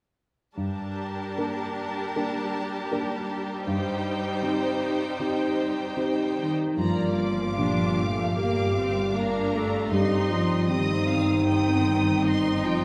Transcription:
0.56 1.36 G2 soft
0.56 6.54 G3 soft
0.56 3.64 D4 soft
0.56 6.54 G4 soft
0.56 3.64 A#4 soft
0.56 3.63 A5 soft
1.38 2.12 A#3 soft
1.38 2.12 D4 soft
1.38 2.13 A#4 soft
2.16 2.88 A#3 soft
2.16 2.88 D4 soft
2.16 2.88 A#4 soft
2.92 3.63 A#3 soft
2.92 3.63 D4 soft
2.92 3.64 A#4 soft
3.67 4.41 G2 soft
3.67 6.53 D#4 soft
3.67 6.53 C5 soft
3.67 6.54 G5 soft
4.42 5.15 C4 soft
4.42 5.15 D#4 soft
4.42 5.15 G4 soft
5.19 5.93 C4 soft
5.19 5.93 D#4 soft
5.19 5.93 G4 soft
5.97 6.74 C4 soft
5.97 6.74 D#4 soft
5.97 6.74 G4 soft
6.37 6.75 D#3 soft
6.37 6.80 D#4 soft
6.77 9.88 G1 soft
6.77 7.55 G2 soft
6.77 9.88 A#2 soft
6.77 8.37 F3 soft
6.77 12.85 G3 soft
6.77 7.53 A#3 soft
6.77 8.37 F4 medium
6.77 7.54 D5 soft
6.77 7.15 A#5 soft
7.19 8.37 D6 soft
7.57 9.88 A#2 soft
7.57 9.88 D4 soft
7.57 7.98 D4 soft
7.57 9.88 G4 soft
7.57 9.92 F5 soft
7.99 8.38 A3 soft
8.37 9.15 G3 soft
8.37 8.76 A#3 soft
8.37 9.17 G4 soft
8.37 9.14 D6 soft
8.76 9.14 C4 soft
9.15 9.53 A#3 soft
9.15 9.91 D4 soft
9.15 9.57 A#4 medium
9.15 9.93 A#5 soft
9.54 9.92 A3 soft
9.54 9.95 A4 medium
9.91 12.85 G1 soft
9.91 10.67 G2 soft
9.91 10.31 G3 soft
9.91 12.85 C4 soft
9.91 10.69 D#4 soft
9.91 10.32 G4 medium
9.91 10.67 D#5 soft
9.91 10.69 C6 soft
10.31 10.70 F3 soft
10.31 10.71 F4 soft
10.69 12.64 D#3 soft
10.69 12.85 C4 soft
10.69 11.47 C4 soft
10.69 12.64 D#4 medium
10.69 12.85 D#4 soft
10.69 12.85 G4 soft
10.69 11.08 D#5 soft
10.69 11.47 D#6 soft
11.08 11.47 F5 soft
11.46 12.24 C4 soft
11.46 12.24 G5 soft
11.46 12.26 D#6 soft
12.24 12.85 D#4 soft
12.24 12.85 D#5 soft
12.24 12.64 C6 soft
12.64 12.85 F3 soft
12.64 12.85 F4 medium
12.64 12.85 G5 soft

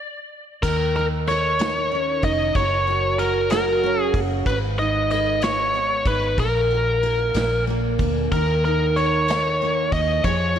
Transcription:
0.63 2.20 D#2 medium
0.63 2.56 D#3 medium
0.63 0.93 A#4 medium
0.63 1.27 A#4 soft
0.63 kick loud
0.63 crash loud
0.95 1.59 D#4 medium
0.95 1.05 A#4 medium
0.95 ride soft
1.27 2.54 A#4 medium
1.27 2.24 C#5 medium
1.27 ride medium
1.59 2.21 D#4 medium
1.59 snare loud
1.59 ride medium
1.92 2.62 C#4 medium
1.92 ride soft
2.22 2.53 F1 medium
2.22 2.61 D#4 medium
2.22 2.56 D#5 loud
2.22 kick loud
2.22 ride medium
2.55 4.10 F#1 loud
2.55 4.46 F#3 medium
2.55 3.18 A#4 medium
2.55 3.21 C#5 loud
2.55 kick loud
2.55 ride medium
2.87 3.50 F#4 medium
2.87 ride soft
3.19 3.50 A#4 medium
3.19 4.46 A#4 medium
3.19 ride medium
3.50 4.13 F#4 medium
3.50 4.01 A#4 medium
3.50 snare loud
3.50 ride medium
3.83 4.53 C#4 medium
3.83 ride soft
4.01 4.19 G#4 medium
4.14 4.44 F#1 loud
4.14 4.53 F#4 medium
4.14 kick loud
4.14 ride medium
4.46 6.02 G#1 medium
4.46 6.38 G#2 medium
4.46 4.56 B4 medium
4.46 5.10 B4 medium
4.46 kick loud
4.46 ride medium
4.78 5.41 D#4 medium
4.78 5.08 D#5 medium
4.78 ride soft
5.10 6.39 B4 medium
5.10 5.43 D#5 medium
5.10 ride medium
5.41 6.05 D#4 medium
5.41 6.09 C#5 medium
5.41 snare loud
5.41 ride medium
5.74 6.44 B3 medium
5.74 ride soft
6.06 6.36 G#1 medium
6.06 6.45 D#4 medium
6.06 6.36 B4 medium
6.06 kick loud
6.06 ride medium
6.38 7.31 A#1 medium
6.38 7.33 A#2 medium
6.38 7.03 A#4 medium
6.38 7.64 A#4 medium
6.38 kick loud
6.38 ride medium
6.70 7.42 F#4 medium
6.70 ride soft
7.03 8.33 A#4 medium
7.03 ride medium
7.34 7.95 A#1 medium
7.34 8.38 A#2 medium
7.34 snare loud
7.34 ride medium
7.67 8.38 A#3 medium
7.67 ride soft
7.99 8.30 D2 medium
7.99 8.38 D4 medium
7.99 kick loud
7.99 ride medium
8.32 9.88 D#2 loud
8.32 10.24 D#3 medium
8.32 8.62 A#4 medium
8.32 8.95 A#4 medium
8.32 kick loud
8.32 ride medium
8.64 9.28 D#4 medium
8.64 8.98 A#4 medium
8.64 ride soft
8.96 10.24 A#4 medium
8.96 9.93 C#5 medium
8.96 ride medium
9.28 9.92 D#4 medium
9.28 snare loud
9.28 ride medium
9.61 10.31 A#3 medium
9.61 ride soft
9.92 10.22 D#2 medium
9.92 10.31 D#4 medium
9.92 10.24 D#5 loud
9.92 kick loud
9.92 ride medium
10.24 10.59 F2 loud
10.24 10.59 F3 medium
10.24 10.59 G#4 medium
10.24 10.59 C#5 loud
10.24 kick loud
10.24 ride medium
10.56 10.59 F4 medium
10.56 ride soft

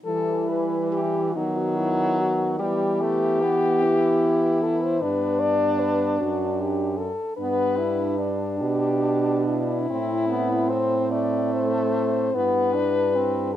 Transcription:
0.05 1.38 E3 medium
0.05 1.32 E3 medium
0.05 1.33 G3 medium
0.05 0.51 A4 loud
0.49 0.92 B4 medium
0.92 1.37 G4 loud
1.35 2.58 D#3 medium
1.35 2.59 F#3 medium
1.35 2.58 B3 medium
1.35 1.58 D#4 medium
1.57 1.78 F#4 medium
1.76 2.21 E4 medium
2.20 2.59 F#4 medium
2.59 5.04 E3 medium
2.59 3.03 G3 medium
2.59 4.98 B3 medium
2.59 4.64 G4 loud
3.01 3.44 A3 medium
3.43 3.85 B3 medium
3.83 5.03 E4 medium
4.63 4.84 A4 medium
4.83 5.03 C5 medium
5.01 6.22 G2 medium
5.01 6.24 B3 medium
5.01 7.13 D4 medium
5.01 5.41 B4 loud
5.40 5.81 D5 medium
5.80 6.18 B4 medium
6.19 7.12 F#2 medium
6.19 7.14 D4 medium
6.19 6.62 F#4 medium
6.61 6.99 G4 medium
6.98 7.36 A4 medium
7.37 8.63 G2 medium
7.37 7.79 B3 medium
7.37 8.57 D4 medium
7.37 8.29 B4 loud
7.78 8.19 E4 medium
8.18 9.89 D4 medium
8.58 9.90 B2 medium
8.58 9.87 D4 medium
8.58 9.44 G4 medium
9.48 10.72 E4 loud
9.89 12.31 A2 medium
9.89 12.36 C4 medium
9.89 10.29 C4 medium
10.29 10.70 B3 medium
10.69 11.12 C4 medium
10.69 11.11 C5 medium
11.11 12.34 A3 medium
11.11 11.55 D5 medium
11.53 12.36 C5 medium
12.34 13.57 G2 medium
12.34 12.75 B3 medium
12.34 13.55 E4 medium
12.34 13.57 B4 loud
12.74 13.17 D4 medium
13.16 13.54 C4 medium

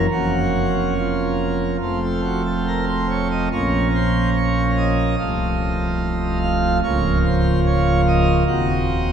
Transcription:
0.11 1.77 F1 medium
0.11 1.77 F2 medium
0.11 1.77 F3 soft
0.11 1.77 A#3 soft
0.11 1.77 C#4 soft
0.11 0.94 F#4 medium
0.96 1.99 F4 medium
1.81 3.48 F1 soft
1.81 3.48 F2 soft
1.81 3.48 F3 soft
1.81 3.48 A3 soft
1.81 3.48 C4 soft
2.03 2.21 A4 medium
2.24 2.42 F#4 medium
2.45 2.63 A4 medium
2.67 2.85 A#4 medium
2.89 3.07 C5 medium
3.10 3.28 C#5 medium
3.31 3.49 D#5 medium
3.52 5.15 A#1 medium
3.52 5.15 A#2 medium
3.52 5.15 F3 soft
3.52 5.15 A#3 soft
3.52 5.15 C#4 soft
3.52 3.88 C#5 medium
3.95 4.30 C5 loud
4.36 4.71 C#5 medium
4.77 6.39 D#5 medium
5.18 6.80 C1 medium
5.18 6.80 C2 soft
5.18 6.80 F3 soft
5.18 6.80 A3 soft
5.18 6.80 F4 soft
6.43 6.78 F5 medium
6.83 8.44 C#1 medium
6.83 8.44 C#2 medium
6.83 8.44 F3 soft
6.83 8.44 A#3 soft
6.83 8.44 F4 soft
6.83 7.19 C#5 loud
7.25 7.60 C5 medium
7.66 8.01 C#5 medium
8.08 9.12 D#5 loud
8.48 9.12 D#1 medium
8.48 9.12 D#2 medium
8.48 9.12 A#3 soft
8.48 9.12 C4 soft
8.48 9.12 F#4 soft

